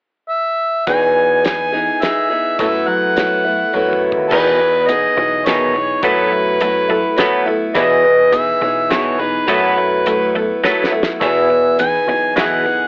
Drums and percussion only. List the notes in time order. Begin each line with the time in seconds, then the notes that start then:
0.87 kick, closed hi-hat
1.45 snare, closed hi-hat
2.02 snare, closed hi-hat
2.59 kick, closed hi-hat
3.17 snare, closed hi-hat
3.74 kick
3.93 kick
4.12 kick
4.31 kick, crash
4.89 closed hi-hat
5.46 snare, closed hi-hat
6.03 kick, closed hi-hat
6.60 closed hi-hat
7.18 snare, closed hi-hat
7.75 kick, closed hi-hat
8.33 closed hi-hat
8.91 snare, closed hi-hat
9.48 kick, closed hi-hat
10.06 closed hi-hat
10.64 snare
10.84 snare
11.03 snare
11.21 kick, closed hi-hat
11.79 closed hi-hat
12.36 snare, closed hi-hat